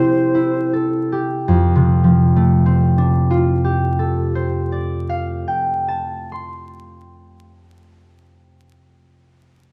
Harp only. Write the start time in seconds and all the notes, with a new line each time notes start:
Already playing: C3 E4 G4 A4
0.00 C4
0.35 E4
0.73 A4
1.12 G4
1.48 F2
1.76 C3
2.04 F3
2.36 A3
2.66 C4
2.98 D4
3.31 F4
3.65 G4
3.99 A4
4.35 C5
4.72 D5
5.09 F5
5.48 G5
5.88 A5
6.32 C6